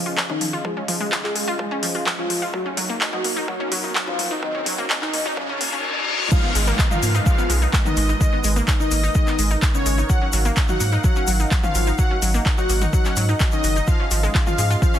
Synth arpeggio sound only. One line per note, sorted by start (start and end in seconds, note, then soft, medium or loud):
0.06 0.11 F4 medium
0.17 0.20 F3 medium
0.30 0.37 C#4 medium
0.41 0.44 F3 medium
0.53 0.58 F4 medium
0.65 0.72 F3 medium
0.77 0.84 C#4 medium
0.88 0.96 F3 loud
1.00 1.07 G#3 loud
1.12 1.17 F4 medium
1.24 1.29 F4 medium
1.36 1.41 G#3 medium
1.48 1.52 F4 loud
1.59 1.67 F3 medium
1.71 1.76 C#4 loud
1.83 1.90 F3 loud
1.95 2.00 F4 medium
2.06 2.09 F3 medium
2.18 2.26 C#4 medium
2.30 2.33 F3 medium
2.42 2.47 F4 medium
2.54 2.61 F#3 medium
2.66 2.73 C#4 medium
2.77 2.85 F#3 loud
2.89 2.96 A#3 loud
3.01 3.06 D#4 medium
3.13 3.18 D#4 medium
3.25 3.29 A#3 medium
3.37 3.41 D#4 loud
3.48 3.56 F#3 medium
3.60 3.65 C#4 loud
3.72 3.79 F#3 loud
3.84 3.89 D#4 medium
3.95 3.98 F#3 medium
4.07 4.15 C#4 medium
4.19 4.22 F#3 medium
4.31 4.36 D#4 medium
4.43 4.50 F#3 medium
4.55 4.62 C#4 medium
4.66 4.74 F#3 loud
4.78 4.85 A#3 loud
4.90 4.95 D#4 medium
5.02 5.07 D#4 medium
5.13 5.18 A#3 medium
5.26 5.30 D#4 loud
5.37 5.45 F#3 medium
5.49 5.54 C#4 loud
5.61 5.64 A#3 medium
5.73 5.80 C#4 medium
6.32 6.39 G#3 medium
6.44 6.51 B3 medium
6.55 6.63 G#3 loud
6.67 6.74 A#3 loud
6.79 6.84 D#4 medium
6.91 6.96 D#4 medium
7.03 7.07 A#3 medium
7.15 7.19 D#4 loud
7.26 7.34 G#3 medium
7.38 7.43 B3 loud
7.50 7.57 G#3 loud
7.62 7.67 D#4 medium
7.73 7.76 G#3 medium
7.85 7.93 B3 medium
7.97 8.00 G#3 medium
8.09 8.14 D#4 medium
8.21 8.28 G#3 medium
8.33 8.40 B3 medium
8.44 8.52 G#3 loud
8.56 8.63 A#3 loud
8.68 8.73 D#4 medium
8.80 8.85 D#4 medium
8.91 8.96 A#3 medium
9.03 9.08 D#4 loud
9.15 9.22 G#3 medium
9.27 9.32 B3 medium
9.39 9.46 G#3 loud
9.51 9.55 D#4 medium
9.62 9.65 G#3 medium
9.74 9.81 B3 medium
9.86 9.89 G#3 medium
9.98 10.03 D#4 medium
10.10 10.17 F#3 medium
10.22 10.29 C#4 medium
10.33 10.41 F#3 loud
10.45 10.52 A#3 loud
10.57 10.62 D#4 medium
10.69 10.74 D#4 medium
10.80 10.85 A#3 medium
10.93 10.97 D#4 loud
11.04 11.11 F#3 medium
11.16 11.21 C#4 loud
11.28 11.35 F#3 loud
11.40 11.45 D#4 medium
11.51 11.54 F#3 medium
11.63 11.71 C#4 medium
11.75 11.78 F#3 medium
11.87 11.92 D#4 medium
11.99 12.06 F#3 medium
12.11 12.18 C#4 medium
12.22 12.30 F#3 loud
12.34 12.41 A#3 loud
12.46 12.51 D#4 medium
12.58 12.63 D#4 medium
12.69 12.74 A#3 medium
12.82 12.86 D#4 loud
12.93 13.00 F#3 medium
13.05 13.10 C#4 loud
13.17 13.24 F#3 loud
13.29 13.33 D#4 medium
13.52 13.59 C#4 medium
13.64 13.67 F#3 medium
13.76 13.81 D#4 medium
13.88 13.95 F3 medium
14.00 14.07 C#4 medium
14.11 14.19 F3 loud
14.23 14.30 G#3 loud
14.35 14.40 F4 medium
14.47 14.52 F4 medium
14.58 14.63 G#3 medium
14.70 14.75 F4 loud
14.82 14.89 F3 medium
14.94 14.99 C#4 loud